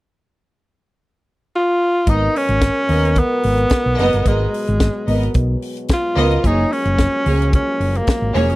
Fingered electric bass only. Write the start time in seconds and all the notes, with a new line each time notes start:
2.07 G#1
2.49 G#1
2.89 D#2
3.45 G#1
3.86 B1
3.99 F#1
4.14 G1
4.25 G#1
4.68 G#1
5.08 G#1
5.35 B1
6.16 C#2
6.44 F#1
6.85 F#1
7.26 C#2
7.80 F#1
8.22 G#1
8.35 E1
8.49 F1